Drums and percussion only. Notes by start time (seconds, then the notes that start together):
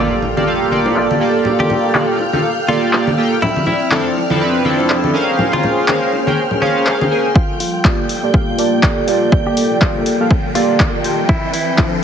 0.22 high bongo
0.37 high conga
0.71 high conga
0.86 high bongo
0.96 clap
1.11 high conga
1.45 low conga
1.60 high conga
1.70 high bongo, low conga
1.94 clap, high conga
2.19 high bongo
2.33 high conga
2.68 high conga
2.93 clap
3.07 high conga
3.43 low conga
3.56 high conga
3.66 high bongo, low conga
3.91 clap, high conga
4.17 high bongo
4.30 high conga
4.65 high conga
4.80 high bongo
4.90 clap
5.04 high conga
5.39 low conga
5.53 high conga
5.63 high bongo, low conga
5.88 clap, high conga
6.13 high bongo
6.27 high conga
6.51 low conga
6.62 high conga
6.87 clap
7.01 high conga
7.36 kick
7.60 open hi-hat
7.85 kick, clap
8.09 open hi-hat
8.34 kick
8.59 open hi-hat
8.83 kick, clap
9.08 open hi-hat
9.32 kick
9.57 open hi-hat
9.81 kick, clap
10.06 open hi-hat
10.31 kick
10.55 open hi-hat
10.80 kick, clap
11.04 open hi-hat
11.29 kick
11.54 open hi-hat
11.78 kick, clap